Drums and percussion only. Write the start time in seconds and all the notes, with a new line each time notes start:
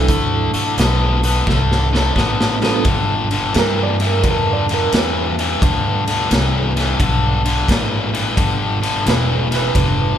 0.08 kick, closed hi-hat
0.54 closed hi-hat
0.78 snare, closed hi-hat
1.24 closed hi-hat
1.47 kick, snare
1.72 snare
1.95 snare
2.16 kick, snare
2.41 snare
2.64 snare
2.85 kick, ride
3.31 ride
3.54 snare, ride
4.00 ride
4.23 kick, ride
4.69 ride
4.92 snare, ride
5.39 ride
5.62 kick, ride
6.07 ride
6.31 snare, ride
6.77 snare, ride
7.00 kick, ride
7.45 ride
7.68 kick, snare, ride
8.15 ride
8.37 kick, ride
8.83 ride
9.06 snare, ride
9.52 snare, ride
9.75 kick, ride